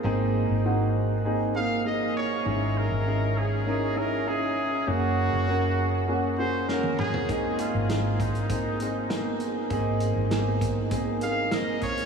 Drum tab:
HH |----------------|----------------|----------------|x-x-x-xxx-x-x-x-|
SD |----------------|----------------|------------o---|----o-------o---|
T1 |----------------|----------------|-------------o--|----------------|
T2 |----------------|----------------|--------------o-|----------------|
FT |----------------|----------------|---------------o|----------------|
BD |----------------|----------------|----------------|o-----o-o-------|

HH |x-x-x-x-x-x-x-xx|
SD |----o-------o---|
T1 |----------------|
T2 |----------------|
FT |----------------|
BD |o-----o-o-----o-|